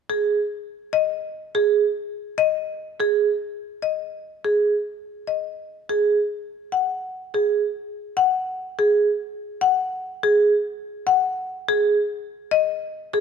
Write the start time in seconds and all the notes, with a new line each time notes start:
0.10 G#4
0.93 D#5
1.55 G#4
2.38 D#5
3.00 G#4
3.82 D#5
4.44 G#4
5.27 D#5
5.89 G#4
6.72 F#5
7.34 G#4
8.17 F#5
8.79 G#4
9.61 F#5
10.23 G#4
11.07 F#5
11.69 G#4
12.51 D#5
13.13 G#4